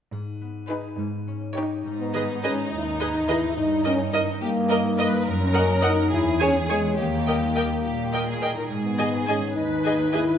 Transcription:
0.12 cello section G#2, harp G#2, triangle
0.41 harp B3
0.69 harp D#4 G#4, viola section D#4, violin section G#4 B4
0.98 cello section G#2, harp G#2
1.28 harp C#4
1.56 harp D#4 G4, viola section D#4, violin section G4 C#5
1.85 cello section G#2, harp G#2, violin section D#4
2.00 french horn section B3
2.14 harp D#3, viola section G#4 B4, violin section D#5
2.43 french horn section C#4, harp D#4, viola section G#4 B4, violin section D#5
2.72 cello section D#2, french horn section D#4, harp G#4
2.77 french horn section E4
2.85 french horn section D#4
3.00 harp D#4, viola section G#4 B4, violin section D#5
3.28 harp D#3, french horn section E4, viola section G#4 B4, violin section D#5
3.57 cello section G2, harp G2, french horn section D#4
3.84 harp G3, french horn section C#4, viola section A#4 D#5, violin section D#5
4.13 french horn section D#4, harp D#4, viola section A#4 D#5, violin section D#5
4.41 cello section G2, french horn section A#3, violin section G4, harp A#4
4.70 harp D#4, violin section A#4 D#5, viola section A#4 D#5
4.98 harp A#3, viola section A#4 D#5, violin section B4 D#5
5.27 cello section F#2, harp F#2, violin section A#4
5.41 french horn section C#4
5.54 harp A#3, viola section A#4 D#5, violin section F#5
5.82 harp D#4 A#4, french horn section D#4, viola section A#4 D#5, violin section F#5
6.11 cello section E2, harp E3, french horn section E4, violin section G#4
6.40 harp G#3, french horn section C#4, viola section G#4 C#5, violin section G#5
6.68 french horn section G#3, viola section G#4 C#5, harp G#4 C#5, violin section G#5
6.97 cello section D#2, harp D#3, french horn section A#3, violin section G4
7.26 harp G3, viola section A#4 D#5, violin section G5
7.56 viola section A#4 D#5, harp D#5, violin section G5
7.84 cello section A#2, violin section G4, harp G4
8.13 viola section A#4 D#5, harp D#5, violin section G5
8.27 violin section G#4
8.42 harp D#4, viola section A#4 D#5, violin section G5
8.57 violin section A#4
8.70 cello section G#2, harp G#2, violin section G#4
8.84 french horn section B3
8.99 harp D#3, viola section G#4 D#5, violin section G#5
9.27 french horn section C#4, harp D#4, viola section G#4 D#5, violin section G#5
9.56 cello section D#2, french horn section D#4, violin section B4, harp D#5
9.85 harp D#4, viola section G#4 D#5, violin section G#5
10.13 harp G#3, french horn section E4, viola section G#4 D#5, violin section G#5

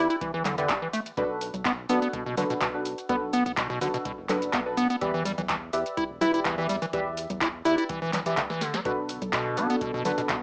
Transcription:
Already playing: synth stab G4 B4 D5 E5
0.10 acid bass E4, closed hi-hat, shaker
0.21 acid bass E3, kick, closed hi-hat, shaker
0.34 analog synth bass E2, acid bass E3
0.45 acid bass D3, clap, open hi-hat, low conga, shaker
0.58 acid bass D3, synth stab G4 B4 D5 E5, closed hi-hat, shaker
0.69 analog synth bass E1, acid bass G4, kick, clap, closed hi-hat, shaker
0.82 acid bass E3
0.93 acid bass A3, open hi-hat, shaker
1.06 closed hi-hat, shaker
1.17 analog synth bass B1, acid bass B2, synth stab D4 F#4 A4 B4, kick, closed hi-hat, shaker
1.41 open hi-hat, shaker
1.54 analog synth bass B1, kick, closed hi-hat, low conga, shaker
1.65 acid bass B3, kick, clap, closed hi-hat, shaker
1.89 analog synth bass B1, acid bass B3, synth stab D4 F#4 A4 B4, open hi-hat, shaker
2.02 acid bass B3, closed hi-hat, shaker
2.13 acid bass B2, kick, closed hi-hat, shaker
2.26 analog synth bass F#1, acid bass B2
2.37 acid bass D3, synth stab D4 F#4 A4 B4, open hi-hat, low conga, shaker
2.50 acid bass B2, closed hi-hat, shaker
2.61 analog synth bass B1, acid bass B2, kick, clap, closed hi-hat, shaker
2.74 synth stab D4 F#4 A4 B4
2.85 open hi-hat, shaker
2.98 closed hi-hat, shaker
3.09 analog synth bass B1, acid bass B3, synth stab D4 F#4 A4 B4, kick, closed hi-hat, shaker
3.33 acid bass B3, open hi-hat, shaker
3.46 analog synth bass B1, kick, closed hi-hat, shaker
3.57 acid bass B2, kick, clap, closed hi-hat, shaker
3.70 acid bass B2
3.81 analog synth bass B1, acid bass D3, synth stab D4 F#4 A4 B4, open hi-hat, shaker
3.94 acid bass B2, closed hi-hat, shaker
4.05 acid bass B2, kick, closed hi-hat, shaker
4.18 analog synth bass F#1
4.29 synth stab D4 F#4 A4 B4, clap, open hi-hat, low conga, shaker
4.42 closed hi-hat, shaker
4.53 analog synth bass B1, acid bass B3, kick, clap, closed hi-hat, shaker
4.66 synth stab D4 F#4 A4 B4
4.77 acid bass B3, open hi-hat, shaker
4.90 acid bass B3, closed hi-hat, shaker
5.01 analog synth bass E2, acid bass E3, synth stab G4 B4 D5 E5, kick, closed hi-hat, shaker
5.14 acid bass E3
5.25 acid bass G3, open hi-hat, shaker
5.38 analog synth bass E2, acid bass E3, kick, closed hi-hat, low conga, shaker
5.49 acid bass E3, kick, clap, closed hi-hat, shaker
5.73 analog synth bass E2, synth stab G4 B4 D5 E5, open hi-hat, shaker
5.86 closed hi-hat, shaker
5.97 acid bass E4, kick, closed hi-hat, shaker
6.10 analog synth bass E1
6.21 acid bass E4, synth stab G4 B4 D5 E5, open hi-hat, low conga, shaker
6.34 closed hi-hat, shaker
6.45 analog synth bass E2, acid bass E3, kick, clap, closed hi-hat, shaker
6.58 acid bass E3, synth stab G4 B4 D5 E5
6.69 acid bass G3, open hi-hat, shaker
6.82 acid bass E3, closed hi-hat, shaker
6.93 analog synth bass E2, acid bass E3, synth stab G4 B4 D5 E5, kick, closed hi-hat, shaker
7.17 open hi-hat, shaker
7.30 analog synth bass E2, kick, closed hi-hat, low conga, shaker
7.41 acid bass E4, kick, clap, closed hi-hat, shaker
7.65 analog synth bass E2, acid bass E4, synth stab G4 B4 D5 E5, open hi-hat, shaker
7.78 acid bass E4, closed hi-hat, shaker
7.89 acid bass E3, kick, closed hi-hat, shaker
8.02 analog synth bass E1, acid bass E3
8.13 acid bass E3, clap, open hi-hat, low conga, shaker
8.26 acid bass E3, synth stab G4 B4 D5 E5, closed hi-hat, shaker
8.37 analog synth bass D2, acid bass D3, kick, clap, closed hi-hat, shaker
8.50 acid bass E3, snare
8.61 acid bass D3, snare, open hi-hat, shaker
8.74 acid bass G3, snare, closed hi-hat, shaker
8.85 analog synth bass B1, acid bass B2, analog synth pad D3 B3 A4, synth stab D4 F#4 A4 B4, kick, closed hi-hat, shaker
9.09 open hi-hat, shaker
9.22 analog synth bass B1, kick, closed hi-hat, low conga, shaker
9.33 acid bass B2, kick, clap, closed hi-hat, shaker
9.57 analog synth bass B1, acid bass B3, synth stab D4 F#4 A4 B4, open hi-hat, shaker
9.70 acid bass B3, closed hi-hat, shaker
9.81 acid bass B2, kick, closed hi-hat, shaker
9.94 analog synth bass F#1, acid bass B2
10.05 acid bass D3, synth stab D4 F#4 A4 B4, open hi-hat, low conga, shaker
10.18 acid bass B2, closed hi-hat, shaker
10.29 analog synth bass B1, acid bass B2, kick, clap, closed hi-hat, shaker

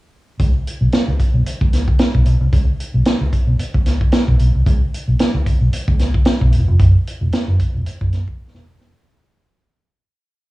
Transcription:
0.39 fingered electric bass C#2, kick, closed hi-hat
0.67 closed hi-hat
0.81 fingered electric bass B1
0.92 snare, closed hi-hat
1.08 fingered electric bass C#2
1.20 kick, closed hi-hat
1.34 fingered electric bass B1
1.46 closed hi-hat
1.61 fingered electric bass C#2, kick
1.73 snare, closed hi-hat
1.88 kick
1.99 snare, closed hi-hat
2.15 fingered electric bass B1, kick
2.26 fingered electric bass B1, closed hi-hat
2.41 fingered electric bass C2
2.53 fingered electric bass C#2, kick, closed hi-hat
2.80 closed hi-hat
2.94 fingered electric bass B1
3.05 snare, closed hi-hat
3.21 fingered electric bass C#2
3.33 kick, closed hi-hat
3.47 fingered electric bass B1
3.59 muted fingered electric bass stroke, closed hi-hat
3.74 fingered electric bass C#2, kick
3.86 snare, closed hi-hat
4.01 kick
4.12 snare, closed hi-hat
4.28 fingered electric bass B1, kick
4.39 fingered electric bass B1, closed hi-hat
4.55 fingered electric bass C2
4.66 fingered electric bass C#2, kick, closed hi-hat
4.94 closed hi-hat
5.08 fingered electric bass B1
5.19 snare, closed hi-hat
5.34 fingered electric bass C#2
5.46 kick, closed hi-hat
5.61 fingered electric bass B1
5.73 muted fingered electric bass stroke, closed hi-hat
5.88 fingered electric bass C#2, kick
5.99 snare, closed hi-hat
6.14 kick
6.25 snare, closed hi-hat
6.42 fingered electric bass B1, kick
6.53 fingered electric bass E1, closed hi-hat
6.68 fingered electric bass F1
6.80 fingered electric bass F#1, kick, closed hi-hat
7.07 closed hi-hat
7.21 fingered electric bass E1
7.32 muted fingered electric bass stroke, snare, closed hi-hat
7.48 fingered electric bass F#1
7.60 kick, closed hi-hat
7.75 fingered electric bass E1
7.86 muted fingered electric bass stroke, closed hi-hat
8.01 fingered electric bass F#1, kick
8.13 snare, closed hi-hat
8.28 kick
8.54 fingered electric bass E1, snare
8.66 fingered electric bass E1
8.81 fingered electric bass F1, snare

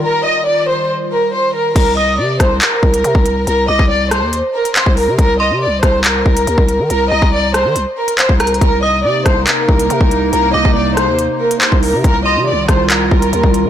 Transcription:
Already playing: analog synth pad D#3 G3 F4
0.05 violin section A#4
0.25 violin section D#5
0.47 violin section D5
0.69 violin section C5
1.11 violin section A#4
1.33 violin section C5
1.55 violin section A#4
1.75 808-style bass C2, violin section A#4, kick, closed hi-hat, crash
1.97 violin section D#5, synth bell D#6
2.19 808-style bass C3, violin section D5
2.40 808-style bass C2, violin section C5, kick, cross-stick, closed hi-hat
2.61 violin section A#4, clap, closed hi-hat
2.83 808-style bass C2, kick
2.94 closed hi-hat
3.04 808-style bass C3, closed hi-hat
3.15 808-style bass C2, kick
3.26 closed hi-hat
3.47 808-style bass C2, violin section A#4, closed hi-hat
3.68 808-style bass C2, violin section D#5, synth bell D6
3.79 808-style bass C2, kick
3.90 violin section D5
4.11 violin section C5, cross-stick, closed hi-hat
4.22 808-style bass D#2
4.33 closed hi-hat
4.54 violin section A#4
4.65 closed hi-hat
4.75 violin section C5, clap, closed hi-hat
4.86 808-style bass C2, kick
4.97 violin section A#4, open hi-hat
5.08 808-style bass C3
5.18 808-style bass C2, violin section A#4, kick, closed hi-hat
5.40 violin section D#5, synth bell C6
5.51 808-style bass C3
5.62 violin section D5
5.67 808-style bass C2
5.83 808-style bass C2, violin section C5, kick, cross-stick, closed hi-hat
6.04 violin section A#4, clap, closed hi-hat
6.26 808-style bass C2, kick
6.37 closed hi-hat
6.47 808-style bass D#2, closed hi-hat
6.58 808-style bass C2, kick
6.68 closed hi-hat
6.79 808-style bass D#3
6.90 808-style bass C2, violin section A#4, closed hi-hat
7.11 808-style bass C2, violin section D#5, synth bell A#5
7.22 808-style bass C2, kick
7.33 violin section D5
7.54 violin section C5, cross-stick, closed hi-hat
7.65 808-style bass D#3
7.76 808-style bass C2, closed hi-hat
7.97 violin section A#4
8.08 closed hi-hat
8.18 violin section C5, clap, closed hi-hat
8.29 808-style bass C2, kick
8.40 violin section A#4, synth bell A#5, cross-stick, closed hi-hat, open hi-hat
8.47 closed hi-hat
8.54 closed hi-hat
8.61 808-style bass C2, analog synth pad C3 A#3 D#4, violin section A#4, kick, closed hi-hat
8.83 violin section D#5, synth bell D#6
9.04 808-style bass C3, violin section D5
9.26 808-style bass C2, violin section C5, kick, cross-stick, closed hi-hat
9.47 violin section A#4, clap, closed hi-hat
9.69 808-style bass C2, kick
9.79 closed hi-hat
9.90 808-style bass C3, closed hi-hat
10.01 808-style bass C2, kick
10.11 closed hi-hat
10.33 808-style bass C2, violin section A#4, closed hi-hat
10.54 808-style bass C2, violin section D#5, synth bell D6
10.65 808-style bass C2, kick
10.75 violin section D5
10.97 violin section C5, cross-stick, closed hi-hat
11.08 808-style bass D#2
11.19 closed hi-hat
11.40 violin section A#4
11.51 closed hi-hat
11.61 violin section C5, clap, closed hi-hat
11.72 808-style bass C2, kick
11.83 violin section A#4, open hi-hat
11.94 808-style bass C3
12.04 808-style bass C2, analog synth pad D#3 G3 F4, violin section A#4, kick, closed hi-hat
12.25 violin section D#5, synth bell C6
12.37 808-style bass C3
12.48 violin section D5
12.52 808-style bass C2
12.68 808-style bass C2, violin section C5, kick, cross-stick, closed hi-hat
12.90 violin section A#4, clap, closed hi-hat
13.11 808-style bass C2, kick
13.22 closed hi-hat
13.33 808-style bass D#2, closed hi-hat
13.44 808-style bass C2, kick
13.54 closed hi-hat
13.65 808-style bass D#3

